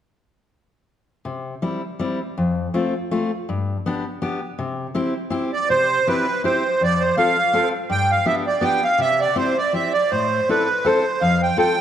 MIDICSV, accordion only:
0, 0, Header, 1, 2, 480
1, 0, Start_track
1, 0, Key_signature, 0, "major"
1, 0, Tempo, 379027
1, 1575, Time_signature, 3, 2, 24, 8
1, 3483, Tempo, 367422
1, 15317, End_track
2, 0, Start_track
2, 0, Title_t, "Accordion"
2, 0, Program_c, 0, 21
2, 7116, Note_on_c, 0, 74, 71
2, 7320, Note_off_c, 0, 74, 0
2, 7334, Note_on_c, 0, 72, 98
2, 7834, Note_on_c, 0, 71, 78
2, 7835, Note_off_c, 0, 72, 0
2, 8279, Note_off_c, 0, 71, 0
2, 8308, Note_on_c, 0, 72, 66
2, 8805, Note_off_c, 0, 72, 0
2, 8815, Note_on_c, 0, 74, 89
2, 9035, Note_on_c, 0, 72, 65
2, 9072, Note_off_c, 0, 74, 0
2, 9241, Note_off_c, 0, 72, 0
2, 9258, Note_on_c, 0, 77, 91
2, 9937, Note_off_c, 0, 77, 0
2, 10228, Note_on_c, 0, 79, 97
2, 10486, Note_off_c, 0, 79, 0
2, 10487, Note_on_c, 0, 77, 81
2, 10679, Note_off_c, 0, 77, 0
2, 10684, Note_on_c, 0, 76, 82
2, 10802, Note_off_c, 0, 76, 0
2, 10955, Note_on_c, 0, 74, 65
2, 11169, Note_on_c, 0, 79, 83
2, 11174, Note_off_c, 0, 74, 0
2, 11434, Note_off_c, 0, 79, 0
2, 11436, Note_on_c, 0, 77, 75
2, 11651, Note_off_c, 0, 77, 0
2, 11659, Note_on_c, 0, 76, 99
2, 11915, Note_off_c, 0, 76, 0
2, 11915, Note_on_c, 0, 74, 80
2, 12129, Note_off_c, 0, 74, 0
2, 12134, Note_on_c, 0, 72, 75
2, 12397, Note_off_c, 0, 72, 0
2, 12400, Note_on_c, 0, 74, 74
2, 12598, Note_off_c, 0, 74, 0
2, 12616, Note_on_c, 0, 76, 75
2, 12860, Note_off_c, 0, 76, 0
2, 12867, Note_on_c, 0, 74, 77
2, 13095, Note_on_c, 0, 72, 77
2, 13097, Note_off_c, 0, 74, 0
2, 13592, Note_off_c, 0, 72, 0
2, 13602, Note_on_c, 0, 71, 72
2, 14074, Note_on_c, 0, 72, 74
2, 14084, Note_off_c, 0, 71, 0
2, 14539, Note_on_c, 0, 77, 83
2, 14556, Note_off_c, 0, 72, 0
2, 14802, Note_off_c, 0, 77, 0
2, 14820, Note_on_c, 0, 79, 68
2, 15012, Note_off_c, 0, 79, 0
2, 15032, Note_on_c, 0, 79, 94
2, 15317, Note_off_c, 0, 79, 0
2, 15317, End_track
0, 0, End_of_file